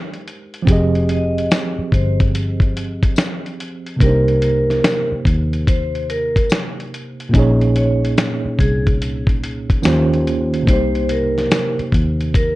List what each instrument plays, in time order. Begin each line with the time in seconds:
Already playing: tine electric piano G#3 D#4 G4 A#4 C5
0.14 closed hi-hat
0.28 closed hi-hat
0.54 closed hi-hat
0.62 tine electric piano F3 C4
0.67 fingered electric bass F1, tine electric piano G4 G#4, kick, closed hi-hat
0.72 tine electric piano D#5
0.95 closed hi-hat
1.09 vibraphone D#5, closed hi-hat
1.38 closed hi-hat
1.51 snare, closed hi-hat, tambourine
1.78 muted fingered electric bass stroke
1.92 fingered electric bass G1, vibraphone C5, kick, closed hi-hat
2.20 kick, closed hi-hat
2.35 closed hi-hat
2.60 kick, closed hi-hat
2.77 closed hi-hat
3.03 kick, closed hi-hat
3.16 snare, closed hi-hat, tambourine
3.46 closed hi-hat
3.60 closed hi-hat
3.86 closed hi-hat
3.96 tine electric piano C3 A#3
4.00 fingered electric bass C2, tine electric piano D4 G4, vibraphone A#4, kick, closed hi-hat
4.06 tine electric piano D#4 C5
4.28 closed hi-hat
4.42 vibraphone A#4, closed hi-hat
4.70 snare, closed hi-hat
4.84 snare, closed hi-hat, tambourine
5.12 muted fingered electric bass stroke
5.25 fingered electric bass D#2, kick, closed hi-hat
5.53 closed hi-hat
5.67 vibraphone C5, kick, closed hi-hat
5.95 closed hi-hat
6.10 vibraphone A#4, closed hi-hat
6.36 kick, closed hi-hat
6.50 snare, closed hi-hat, tambourine
6.80 closed hi-hat
6.94 closed hi-hat
7.20 closed hi-hat
7.29 tine electric piano A#2 A#3 C#4
7.34 fingered electric bass A#1, tine electric piano D#4 G#4, kick, closed hi-hat
7.39 tine electric piano C#5
7.62 closed hi-hat
7.76 vibraphone C#5, closed hi-hat
8.05 closed hi-hat
8.18 snare, closed hi-hat, tambourine
8.46 muted fingered electric bass stroke
8.59 fingered electric bass C2, vibraphone G#4, kick, closed hi-hat
8.87 kick, closed hi-hat
9.02 closed hi-hat
9.27 kick, closed hi-hat
9.43 closed hi-hat
9.70 kick, closed hi-hat
9.82 fingered electric bass D#2, tine electric piano D#3 A#3 C#4 F4 G4, snare, closed hi-hat, tambourine
9.87 tine electric piano C5
10.13 closed hi-hat
10.27 closed hi-hat
10.54 closed hi-hat
10.63 tine electric piano C3 A#3
10.67 fingered electric bass C2, tine electric piano D#4 G4, vibraphone C5, kick, closed hi-hat
10.73 tine electric piano C5
10.95 closed hi-hat
11.09 vibraphone A#4, closed hi-hat
11.38 snare, closed hi-hat
11.51 snare, closed hi-hat, tambourine
11.79 muted fingered electric bass stroke, closed hi-hat
11.92 fingered electric bass D#2, kick, closed hi-hat
12.21 closed hi-hat
12.34 vibraphone A#4, kick, closed hi-hat